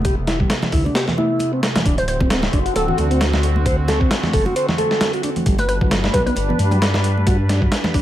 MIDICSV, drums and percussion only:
0, 0, Header, 1, 2, 480
1, 0, Start_track
1, 0, Tempo, 451128
1, 52, Time_signature, 4, 2, 24, 8
1, 8531, End_track
2, 0, Start_track
2, 0, Title_t, "Drums"
2, 51, Note_on_c, 9, 42, 89
2, 52, Note_on_c, 9, 36, 110
2, 53, Note_on_c, 9, 62, 68
2, 157, Note_off_c, 9, 42, 0
2, 158, Note_off_c, 9, 36, 0
2, 159, Note_off_c, 9, 62, 0
2, 292, Note_on_c, 9, 38, 51
2, 292, Note_on_c, 9, 42, 70
2, 300, Note_on_c, 9, 62, 52
2, 398, Note_off_c, 9, 38, 0
2, 398, Note_off_c, 9, 42, 0
2, 406, Note_off_c, 9, 62, 0
2, 426, Note_on_c, 9, 36, 92
2, 530, Note_on_c, 9, 38, 113
2, 530, Note_on_c, 9, 42, 87
2, 532, Note_off_c, 9, 36, 0
2, 637, Note_off_c, 9, 38, 0
2, 637, Note_off_c, 9, 42, 0
2, 663, Note_on_c, 9, 63, 102
2, 666, Note_on_c, 9, 38, 46
2, 668, Note_on_c, 9, 64, 72
2, 672, Note_on_c, 9, 62, 77
2, 769, Note_off_c, 9, 63, 0
2, 770, Note_on_c, 9, 46, 80
2, 772, Note_off_c, 9, 38, 0
2, 772, Note_on_c, 9, 36, 90
2, 774, Note_off_c, 9, 64, 0
2, 778, Note_off_c, 9, 62, 0
2, 876, Note_off_c, 9, 46, 0
2, 879, Note_off_c, 9, 36, 0
2, 918, Note_on_c, 9, 62, 51
2, 1011, Note_on_c, 9, 38, 105
2, 1011, Note_on_c, 9, 42, 80
2, 1024, Note_off_c, 9, 62, 0
2, 1118, Note_off_c, 9, 38, 0
2, 1118, Note_off_c, 9, 42, 0
2, 1145, Note_on_c, 9, 38, 51
2, 1150, Note_on_c, 9, 64, 79
2, 1251, Note_off_c, 9, 38, 0
2, 1254, Note_on_c, 9, 62, 70
2, 1256, Note_off_c, 9, 64, 0
2, 1258, Note_on_c, 9, 63, 68
2, 1360, Note_off_c, 9, 62, 0
2, 1364, Note_off_c, 9, 63, 0
2, 1484, Note_on_c, 9, 62, 53
2, 1490, Note_on_c, 9, 42, 77
2, 1590, Note_off_c, 9, 62, 0
2, 1597, Note_off_c, 9, 42, 0
2, 1734, Note_on_c, 9, 38, 110
2, 1734, Note_on_c, 9, 42, 80
2, 1840, Note_off_c, 9, 38, 0
2, 1840, Note_off_c, 9, 42, 0
2, 1868, Note_on_c, 9, 38, 104
2, 1868, Note_on_c, 9, 42, 77
2, 1868, Note_on_c, 9, 62, 80
2, 1871, Note_on_c, 9, 63, 85
2, 1873, Note_on_c, 9, 64, 91
2, 1974, Note_off_c, 9, 42, 0
2, 1974, Note_off_c, 9, 62, 0
2, 1974, Note_on_c, 9, 36, 109
2, 1974, Note_on_c, 9, 42, 85
2, 1975, Note_off_c, 9, 38, 0
2, 1975, Note_on_c, 9, 62, 52
2, 1977, Note_off_c, 9, 63, 0
2, 1980, Note_off_c, 9, 64, 0
2, 2080, Note_off_c, 9, 36, 0
2, 2081, Note_off_c, 9, 42, 0
2, 2081, Note_off_c, 9, 62, 0
2, 2107, Note_on_c, 9, 42, 43
2, 2212, Note_off_c, 9, 42, 0
2, 2212, Note_on_c, 9, 42, 70
2, 2319, Note_off_c, 9, 42, 0
2, 2346, Note_on_c, 9, 36, 94
2, 2348, Note_on_c, 9, 62, 75
2, 2451, Note_on_c, 9, 38, 114
2, 2451, Note_on_c, 9, 42, 87
2, 2453, Note_off_c, 9, 36, 0
2, 2454, Note_off_c, 9, 62, 0
2, 2558, Note_off_c, 9, 38, 0
2, 2558, Note_off_c, 9, 42, 0
2, 2578, Note_on_c, 9, 63, 92
2, 2584, Note_on_c, 9, 62, 48
2, 2586, Note_on_c, 9, 38, 59
2, 2684, Note_off_c, 9, 63, 0
2, 2690, Note_off_c, 9, 62, 0
2, 2692, Note_off_c, 9, 38, 0
2, 2693, Note_on_c, 9, 36, 92
2, 2693, Note_on_c, 9, 42, 65
2, 2799, Note_off_c, 9, 36, 0
2, 2799, Note_off_c, 9, 42, 0
2, 2828, Note_on_c, 9, 42, 44
2, 2933, Note_on_c, 9, 62, 76
2, 2934, Note_off_c, 9, 42, 0
2, 2934, Note_on_c, 9, 42, 88
2, 3040, Note_off_c, 9, 42, 0
2, 3040, Note_off_c, 9, 62, 0
2, 3067, Note_on_c, 9, 64, 82
2, 3167, Note_on_c, 9, 62, 49
2, 3172, Note_on_c, 9, 42, 69
2, 3174, Note_off_c, 9, 64, 0
2, 3175, Note_on_c, 9, 63, 60
2, 3274, Note_off_c, 9, 62, 0
2, 3278, Note_off_c, 9, 42, 0
2, 3282, Note_off_c, 9, 63, 0
2, 3308, Note_on_c, 9, 42, 44
2, 3413, Note_off_c, 9, 42, 0
2, 3413, Note_on_c, 9, 38, 114
2, 3413, Note_on_c, 9, 42, 87
2, 3520, Note_off_c, 9, 38, 0
2, 3520, Note_off_c, 9, 42, 0
2, 3546, Note_on_c, 9, 62, 75
2, 3548, Note_on_c, 9, 38, 58
2, 3652, Note_on_c, 9, 42, 71
2, 3653, Note_off_c, 9, 62, 0
2, 3655, Note_off_c, 9, 38, 0
2, 3758, Note_off_c, 9, 42, 0
2, 3786, Note_on_c, 9, 63, 87
2, 3787, Note_on_c, 9, 62, 49
2, 3892, Note_off_c, 9, 63, 0
2, 3892, Note_on_c, 9, 36, 110
2, 3892, Note_on_c, 9, 42, 88
2, 3893, Note_off_c, 9, 62, 0
2, 3998, Note_off_c, 9, 36, 0
2, 3998, Note_off_c, 9, 42, 0
2, 4128, Note_on_c, 9, 62, 79
2, 4133, Note_on_c, 9, 38, 52
2, 4133, Note_on_c, 9, 42, 71
2, 4235, Note_off_c, 9, 62, 0
2, 4239, Note_off_c, 9, 38, 0
2, 4239, Note_off_c, 9, 42, 0
2, 4266, Note_on_c, 9, 36, 94
2, 4371, Note_on_c, 9, 38, 115
2, 4371, Note_on_c, 9, 42, 87
2, 4373, Note_off_c, 9, 36, 0
2, 4376, Note_on_c, 9, 62, 53
2, 4477, Note_off_c, 9, 38, 0
2, 4477, Note_off_c, 9, 42, 0
2, 4483, Note_off_c, 9, 62, 0
2, 4503, Note_on_c, 9, 63, 95
2, 4503, Note_on_c, 9, 64, 77
2, 4507, Note_on_c, 9, 38, 46
2, 4609, Note_off_c, 9, 63, 0
2, 4609, Note_off_c, 9, 64, 0
2, 4612, Note_on_c, 9, 36, 92
2, 4612, Note_on_c, 9, 46, 79
2, 4613, Note_off_c, 9, 38, 0
2, 4718, Note_off_c, 9, 46, 0
2, 4719, Note_off_c, 9, 36, 0
2, 4745, Note_on_c, 9, 62, 76
2, 4852, Note_off_c, 9, 62, 0
2, 4852, Note_on_c, 9, 42, 87
2, 4959, Note_off_c, 9, 42, 0
2, 4985, Note_on_c, 9, 38, 43
2, 4987, Note_on_c, 9, 64, 83
2, 4989, Note_on_c, 9, 62, 53
2, 5089, Note_on_c, 9, 42, 68
2, 5092, Note_off_c, 9, 38, 0
2, 5093, Note_off_c, 9, 64, 0
2, 5095, Note_off_c, 9, 62, 0
2, 5096, Note_on_c, 9, 63, 60
2, 5195, Note_off_c, 9, 42, 0
2, 5203, Note_off_c, 9, 63, 0
2, 5224, Note_on_c, 9, 38, 48
2, 5328, Note_off_c, 9, 38, 0
2, 5328, Note_on_c, 9, 38, 117
2, 5328, Note_on_c, 9, 42, 89
2, 5330, Note_on_c, 9, 62, 84
2, 5434, Note_off_c, 9, 38, 0
2, 5434, Note_off_c, 9, 42, 0
2, 5436, Note_off_c, 9, 62, 0
2, 5463, Note_on_c, 9, 42, 45
2, 5568, Note_off_c, 9, 42, 0
2, 5568, Note_on_c, 9, 42, 71
2, 5576, Note_on_c, 9, 62, 49
2, 5675, Note_off_c, 9, 42, 0
2, 5682, Note_off_c, 9, 62, 0
2, 5704, Note_on_c, 9, 42, 43
2, 5706, Note_on_c, 9, 64, 91
2, 5711, Note_on_c, 9, 63, 85
2, 5810, Note_off_c, 9, 42, 0
2, 5810, Note_on_c, 9, 42, 90
2, 5811, Note_on_c, 9, 36, 112
2, 5813, Note_off_c, 9, 64, 0
2, 5818, Note_off_c, 9, 63, 0
2, 5916, Note_off_c, 9, 42, 0
2, 5917, Note_off_c, 9, 36, 0
2, 5942, Note_on_c, 9, 62, 83
2, 5946, Note_on_c, 9, 42, 43
2, 6049, Note_off_c, 9, 62, 0
2, 6051, Note_off_c, 9, 42, 0
2, 6051, Note_on_c, 9, 42, 69
2, 6158, Note_off_c, 9, 42, 0
2, 6185, Note_on_c, 9, 36, 91
2, 6187, Note_on_c, 9, 62, 49
2, 6291, Note_on_c, 9, 38, 113
2, 6291, Note_on_c, 9, 42, 90
2, 6292, Note_off_c, 9, 36, 0
2, 6293, Note_off_c, 9, 62, 0
2, 6397, Note_off_c, 9, 38, 0
2, 6397, Note_off_c, 9, 42, 0
2, 6426, Note_on_c, 9, 38, 58
2, 6426, Note_on_c, 9, 63, 93
2, 6532, Note_off_c, 9, 38, 0
2, 6532, Note_off_c, 9, 63, 0
2, 6532, Note_on_c, 9, 36, 94
2, 6532, Note_on_c, 9, 42, 69
2, 6535, Note_on_c, 9, 62, 80
2, 6638, Note_off_c, 9, 36, 0
2, 6638, Note_off_c, 9, 42, 0
2, 6642, Note_off_c, 9, 62, 0
2, 6669, Note_on_c, 9, 42, 44
2, 6766, Note_on_c, 9, 62, 54
2, 6773, Note_off_c, 9, 42, 0
2, 6773, Note_on_c, 9, 42, 90
2, 6872, Note_off_c, 9, 62, 0
2, 6879, Note_off_c, 9, 42, 0
2, 6916, Note_on_c, 9, 64, 77
2, 7010, Note_on_c, 9, 63, 66
2, 7014, Note_on_c, 9, 42, 68
2, 7022, Note_off_c, 9, 64, 0
2, 7116, Note_off_c, 9, 63, 0
2, 7120, Note_off_c, 9, 42, 0
2, 7142, Note_on_c, 9, 62, 75
2, 7150, Note_on_c, 9, 42, 44
2, 7248, Note_off_c, 9, 62, 0
2, 7255, Note_off_c, 9, 42, 0
2, 7255, Note_on_c, 9, 38, 115
2, 7255, Note_on_c, 9, 42, 87
2, 7361, Note_off_c, 9, 38, 0
2, 7361, Note_off_c, 9, 42, 0
2, 7386, Note_on_c, 9, 38, 56
2, 7396, Note_on_c, 9, 62, 51
2, 7491, Note_on_c, 9, 42, 71
2, 7492, Note_off_c, 9, 38, 0
2, 7502, Note_off_c, 9, 62, 0
2, 7597, Note_off_c, 9, 42, 0
2, 7634, Note_on_c, 9, 63, 79
2, 7732, Note_on_c, 9, 42, 87
2, 7733, Note_on_c, 9, 36, 110
2, 7737, Note_on_c, 9, 62, 80
2, 7740, Note_off_c, 9, 63, 0
2, 7838, Note_off_c, 9, 42, 0
2, 7839, Note_off_c, 9, 36, 0
2, 7844, Note_off_c, 9, 62, 0
2, 7974, Note_on_c, 9, 38, 52
2, 7974, Note_on_c, 9, 42, 72
2, 7978, Note_on_c, 9, 62, 59
2, 8080, Note_off_c, 9, 38, 0
2, 8080, Note_off_c, 9, 42, 0
2, 8084, Note_off_c, 9, 62, 0
2, 8106, Note_on_c, 9, 36, 93
2, 8212, Note_on_c, 9, 38, 114
2, 8212, Note_on_c, 9, 42, 89
2, 8213, Note_off_c, 9, 36, 0
2, 8318, Note_off_c, 9, 38, 0
2, 8318, Note_off_c, 9, 42, 0
2, 8341, Note_on_c, 9, 63, 85
2, 8342, Note_on_c, 9, 64, 87
2, 8344, Note_on_c, 9, 38, 48
2, 8348, Note_on_c, 9, 62, 85
2, 8448, Note_off_c, 9, 63, 0
2, 8449, Note_off_c, 9, 64, 0
2, 8450, Note_off_c, 9, 38, 0
2, 8450, Note_on_c, 9, 46, 78
2, 8452, Note_on_c, 9, 36, 93
2, 8455, Note_off_c, 9, 62, 0
2, 8531, Note_off_c, 9, 36, 0
2, 8531, Note_off_c, 9, 46, 0
2, 8531, End_track
0, 0, End_of_file